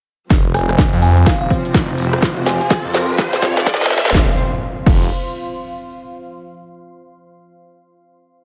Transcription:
0.30 F1 C3 F3 C4 F4, kick, snare, closed hi-hat, riser
0.54 G#5, cross-stick, open hi-hat
0.59 C5
0.66 F1 F5 C6, cross-stick, closed hi-hat
0.78 kick, snare, closed hi-hat
0.93 F2, closed hi-hat
1.02 G#5, open hi-hat
1.17 closed hi-hat
1.26 D#1 F5, kick, snare, closed hi-hat
1.41 F5
1.50 kick, open hi-hat
1.65 closed hi-hat
1.74 F1, kick, snare, closed hi-hat
1.89 closed hi-hat
1.98 F1, open hi-hat
2.13 cross-stick, closed hi-hat
2.22 F1, kick, snare, closed hi-hat
2.46 G#5, snare, open hi-hat
2.61 G#5, closed hi-hat
2.70 kick, snare, closed hi-hat
2.85 F2, closed hi-hat
2.94 snare, open hi-hat
3.09 closed hi-hat
3.18 F2, kick, snare, closed hi-hat
3.33 snare
3.42 kick, snare, open hi-hat
3.57 F1, snare, closed hi-hat
3.66 kick, snare, closed hi-hat
3.74 snare
3.81 snare, closed hi-hat
3.86 snare
3.90 snare, open hi-hat
3.98 snare
4.05 F1, snare, closed hi-hat
4.10 snare
4.14 F1 F3 C4 F4 C5, kick, snare, impact
4.23 C5
4.31 F5
4.37 C6
4.86 F1, kick, crash

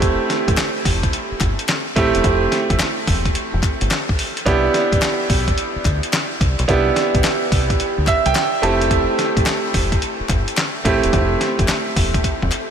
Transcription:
Already playing: F1 A3 C4 E4 G4
0.02 kick, closed hi-hat
0.30 snare, closed hi-hat
0.48 A1, kick, closed hi-hat
0.57 snare, clap, closed hi-hat
0.85 F1, kick, open hi-hat
1.03 kick, closed hi-hat
1.13 closed hi-hat
1.31 muted fingered electric bass stroke
1.41 G1, kick, clap, closed hi-hat
1.59 closed hi-hat
1.68 snare, clap, closed hi-hat
1.96 A1 A3 C4 E4 G4, kick, closed hi-hat
2.15 E1, closed hi-hat
2.24 F1, kick, closed hi-hat
2.52 snare, closed hi-hat
2.70 F1, kick, closed hi-hat
2.79 snare, clap, closed hi-hat
3.07 E1, kick, open hi-hat
3.25 kick, closed hi-hat
3.35 muted fingered electric bass stroke, closed hi-hat
3.54 F1
3.63 kick, clap, closed hi-hat
3.81 G1, closed hi-hat
3.91 snare, clap, closed hi-hat
4.09 kick
4.19 open hi-hat
4.37 closed hi-hat
4.45 C2 B3 D4 E4 G4, kick, closed hi-hat
4.74 snare, closed hi-hat
4.92 A1, kick, closed hi-hat
5.02 snare, clap, closed hi-hat
5.30 B1, kick, open hi-hat
5.48 kick, closed hi-hat
5.58 closed hi-hat
5.76 muted fingered electric bass stroke
5.85 D2, kick, clap, closed hi-hat
6.03 closed hi-hat
6.13 snare, clap, closed hi-hat
6.41 C2, kick, closed hi-hat
6.59 B1, closed hi-hat
6.68 C2 B3 D4 E4 G4, kick, closed hi-hat
6.96 snare, closed hi-hat
7.14 B1, kick, closed hi-hat
7.24 snare, clap, closed hi-hat
7.52 C2, kick, open hi-hat
7.70 kick, closed hi-hat
7.80 muted fingered electric bass stroke, closed hi-hat
7.98 D2
8.07 E5, kick, clap, closed hi-hat
8.26 C2 G5, closed hi-hat
8.35 G5, snare, clap, closed hi-hat
8.37 clap
8.62 F1 A3 C4 E4 G4 A5, closed hi-hat
8.81 closed hi-hat
8.91 kick, closed hi-hat
9.19 snare, closed hi-hat
9.37 A1, kick, closed hi-hat
9.46 snare, clap, closed hi-hat
9.74 F1, kick, open hi-hat
9.92 kick, closed hi-hat
10.02 closed hi-hat
10.20 muted fingered electric bass stroke
10.29 G1, kick, clap, closed hi-hat
10.48 closed hi-hat
10.57 snare, clap, closed hi-hat
10.59 clap
10.84 A1 A3 C4 E4 G4, kick, closed hi-hat
11.03 E1, closed hi-hat
11.13 F1, kick, closed hi-hat
11.41 snare, closed hi-hat
11.59 F1, kick, closed hi-hat
11.68 snare, clap, closed hi-hat
11.96 E1, kick, open hi-hat
12.14 kick, closed hi-hat
12.24 muted fingered electric bass stroke, kick, closed hi-hat
12.42 F1, kick
12.52 clap, closed hi-hat

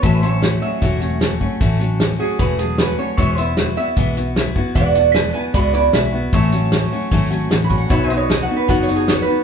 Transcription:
Already playing: C#5
0.02 A1 A2 E3 F#3 A3 C#4 F#4 B4 E5, kick, closed hi-hat
0.23 F#3 A3 C#4 F#4 E5, closed hi-hat
0.28 C#5
0.42 F#3 A3 C#4 F#4, snare, closed hi-hat
0.61 F#3 A3 C#4 F#4 E5
0.81 E1 A2 E3 F#3 A3 C#4 F#4, kick, closed hi-hat
1.01 F#3 A3 C#4 F#4, closed hi-hat
1.21 F#3 A3 C#4 F#4, snare, closed hi-hat
1.40 F#3 A3 C#4 F#4, kick
1.60 A1 A2 E3 F#3 A3 C#4 F#4, kick, closed hi-hat
1.80 F#3 A3 C#4 F#4, closed hi-hat
2.00 F#3 A3 C#4 F#4, snare, closed hi-hat
2.19 F#3 A3 C#4 F#4 G#4
2.39 E1 A2 E3 F#3 A3 C#4 F#4 B4, kick, closed hi-hat
2.59 F#3 A3 C#4 F#4 G#4, closed hi-hat
2.78 F#3 A3 C#4 F#4 B4, snare, closed hi-hat
2.98 F#3 A3 C#4 F#4 C#5
3.18 E1 E3 G#3 B3 E4 F#4 C#5 E5, kick, closed hi-hat
3.37 B3 E4 F#4 E5, closed hi-hat
3.43 B4
3.57 G#3 B3 E4 F#4, snare, closed hi-hat
3.77 B3 E4 F#4 E5
3.96 B1 E3 G#3 B3 E4 F#4, kick, closed hi-hat
4.17 B3 E4 F#4, closed hi-hat
4.36 G#3 B3 E4 F#4, snare, closed hi-hat
4.56 B3 E4 F#4, kick
4.75 E1 E3 G#3 B3 E4 F#4 D5 F#5, kick, closed hi-hat
4.95 B3 E4 F#4 D5 F#5, closed hi-hat
5.14 G#3 B3 E4 F#4 B4 G#5, snare, closed hi-hat
5.33 B3 E4 F#4 B4 G#5
5.54 C#2 E3 G#3 B3 E4 F#4 D5 B5, kick, closed hi-hat
5.73 B3 E4 F#4 D5 B5, closed hi-hat
5.93 B1 G#3 B3 E4 F#4 E5, snare, closed hi-hat
6.12 B3 E4 F#4
6.33 A1 A2 E3 F#3 A3 C#4 F#4 C#5 E5, kick, closed hi-hat
6.52 F#3 A3 C#4 F#4, closed hi-hat
6.72 F#3 A3 C#4 F#4, snare, closed hi-hat
6.92 F#3 A3 C#4 F#4
7.11 G#1 A2 E3 F#3 A3 C#4 F#4, kick, closed hi-hat
7.30 F#3 A3 C#4 F#4, closed hi-hat
7.50 A1 F#3 A3 C#4 F#4, snare, closed hi-hat
7.64 B5
7.69 F#3 A3 C#4 F#4, kick
7.78 F#5
7.89 B1 B2 F#3 B3 D#4 F#4 C#5 E5 B5, kick, closed hi-hat
8.04 G#5
8.10 B3 D#4 F#4 D#5, closed hi-hat
8.15 B4 C#5
8.29 F#3 B3 D#4 F#4 G#5, snare, closed hi-hat
8.43 F#5
8.48 B3 D#4 F#4
8.57 B4
8.68 F#1 B2 F#3 B3 D#4 F#4 F#5, kick, closed hi-hat
8.83 C#5
8.88 B3 D#4 F#4, closed hi-hat
8.96 G#4
9.08 F#3 B3 D#4 F#4 C#5, snare, closed hi-hat
9.22 B4
9.27 B3 D#4 F#4

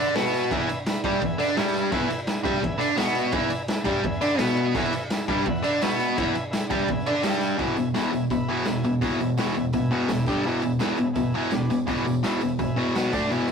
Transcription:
Already playing: D3
0.00 D4, tambourine
0.15 B2 B3 B4 E5 G#5, snare, ride, tambourine
0.26 tambourine
0.34 ride, tambourine
0.51 E2 E3 B4 E5 G#5, kick, ride
0.61 tambourine
0.69 muted overdriven electric guitar stroke, ride, tambourine
0.79 tambourine
0.86 B4 E5 B5, snare, ride, tambourine
0.97 tambourine
1.04 G2 G3 B4, kick, ride, tambourine
1.08 E5 G#5
1.16 tambourine
1.22 E2 B4 E5 G#5, kick, ride, tambourine
1.39 D3 D4, ride, tambourine
1.50 tambourine
1.56 G2 G3 B4 E5 G#5, snare, ride, tambourine
1.68 tambourine
1.74 ride, tambourine
1.91 E2 E3 B4 E5 G#5, kick, tambourine, crash
2.03 tambourine
2.09 muted overdriven electric guitar stroke, ride, tambourine
2.27 B4 E5 G#5, snare, ride, tambourine
2.43 G2 G3 B4 E5 B5, kick, ride, tambourine
2.56 tambourine
2.62 E2 B4 E5 G#5, kick, ride
2.79 D3 D4, ride, tambourine
2.97 B2 B3 B4 E5 G#5, snare, ride, tambourine
3.08 tambourine
3.15 ride, tambourine
3.32 E2 E3 B4 G#5, kick, ride, tambourine
3.36 E5
3.43 tambourine
3.50 muted overdriven electric guitar stroke, ride, tambourine
3.68 B4 E5 G#5, snare, ride, tambourine
3.84 G2 G3 B4 E5 G#5, kick, ride
3.96 tambourine
4.03 E2 B4 E5 G#5, kick, ride
4.13 tambourine
4.21 D3 D4, ride, tambourine
4.38 B2 B3 B4 E5 G#5, snare, ride, tambourine
4.47 tambourine
4.57 ride
4.75 E2 E3 B4 E5 G#5, kick, crash, tambourine
4.84 tambourine
4.92 muted overdriven electric guitar stroke, ride, tambourine
5.10 B4 E5 G#5, snare, ride, tambourine
5.28 G2 G3 B4 E5 G#5, kick, ride
5.39 tambourine
5.45 E2 B4 E5 F#5, kick, ride
5.55 tambourine
5.63 D3 D4, ride, tambourine
5.81 B2 B3 B4 E5 G#5, snare, ride, tambourine
5.90 tambourine
6.00 ride, tambourine
6.16 E2 E3 B4 E5 G#5, kick, ride
6.35 muted overdriven electric guitar stroke, ride, tambourine
6.50 B4 E5 G#5, snare, ride, tambourine
6.63 tambourine
6.70 G2 G3 B4 E5 G#5, kick, ride
6.88 E2 B4 E5 G#5, kick, ride, tambourine
7.00 tambourine
7.06 D3 D4, ride
7.16 tambourine
7.23 G2 G3 B4 E5 G#5, snare, ride, tambourine
7.33 tambourine
7.41 ride, tambourine
7.58 E2 B2 E3 B4, kick, open hi-hat
7.62 E5 G#5
7.77 E2 B2, tambourine
7.94 E2 B2 E3, snare, open hi-hat, tambourine
7.99 B4 E5 G#5
8.12 E2 B2, tambourine
8.30 E2 B2 B4 E5 B5, kick, open hi-hat, tambourine
8.48 E2 B2 E3
8.65 E2 B2 B4 E5 G#5, snare, open hi-hat, tambourine
8.84 E2 B2, tambourine
9.01 E2 B2 E3 B4 E5 G#5, kick, open hi-hat
9.20 E2 B2, tambourine
9.37 E2 B2 E3 B4 E5 G#5, snare, open hi-hat, tambourine
9.55 E2 B2, tambourine
9.72 E2 B2 B4 E5 G#5, kick, open hi-hat, tambourine
9.90 E2 B2 E3, tambourine
10.07 E2 B2 B4 E5 G#5, snare, open hi-hat, tambourine
10.26 G2 D3 G3 G4 D5 G5, kick, tambourine
10.43 E2 B2 G#4 B4 E5, open hi-hat
10.47 E3
10.62 E2 B2, tambourine
10.79 E2 B2 E3 G#4 B4 E5, snare, open hi-hat, tambourine
10.97 E2 B2, tambourine
11.13 E2 B2 G#4 B4 E5, kick, open hi-hat, tambourine
11.32 E2 B2 E3, tambourine
11.50 E2 B2 G#4 B4 D5, snare, open hi-hat, tambourine
11.70 E2 B2, tambourine
11.86 E2 B2 E3 G#4 B4 D5, kick, open hi-hat, tambourine
12.05 E2 B2, tambourine
12.23 E2 B2 E3 G#4 B4 E5, snare, open hi-hat, tambourine
12.41 E2 B2, tambourine
12.59 E2 B2 G#4 B4 E5, kick, open hi-hat, tambourine
12.76 E2 B2 E3, tambourine
12.94 B2 F#3 B3 F#4 B4 F#5, snare, open hi-hat, tambourine
13.12 D3 A3 D4 A4 D5, kick, tambourine
13.29 E2 B2 E3 E4 G#4 B4, open hi-hat
13.48 E2, tambourine

